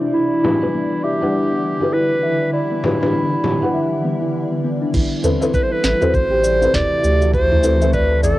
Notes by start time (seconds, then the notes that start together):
Already playing: E3 C4 E4 A4 C5 D5
0.01 D4
0.13 D3 E3 G3 E4
0.43 E3 D4 F#4 G4 B4, frame drum
0.61 E3 G3 D4 F#4 B4
0.74 B3
1.04 G4 E5
1.21 E3 G3 D4 B4 F#5
1.53 B3
1.79 E3 D4 F#4 G4 A4
1.83 B4
1.93 E4 B4
2.23 E5
2.53 E4 D5
2.72 B3
2.83 E3 D4 F#4 G4 B4, frame drum
3.01 E3 D4 F#4 G4 B4, frame drum
3.32 E4
3.44 G4, frame drum
3.60 E3 D4 G4 F#5
3.64 B4
3.74 E5
4.04 B3
4.22 E4
4.52 B3
4.64 B3
4.82 D4
4.94 A1 C3 E3 A3 E4 A4, kick, crash, shaker
5.23 C4 E4 A4 B4, mid tom, shaker
5.40 C4 E4 A4 B4, shaker
5.53 A4 B4, kick, shaker
5.63 C5
5.71 E4 B4
5.84 A1, snare, shaker
6.01 C4 E4 F#4 A4 C5, mid tom, shaker
6.14 A1 C5, kick, shaker
6.31 G4
6.43 D5, shaker
6.61 C4 E4 A4 B4, shaker
6.73 E1 E4 D5, kick, snare, mid tom, shaker
7.03 D2 G4, shaker
7.22 F#4, shaker
7.34 D4 C5, kick, shaker
7.52 E4, mid tom
7.63 C4 E4 A4 B4, shaker
7.81 C4 E4 A4 B4 E5, shaker
7.93 B4 D5, kick, shaker
8.23 A1 A4 D5, mid tom, shaker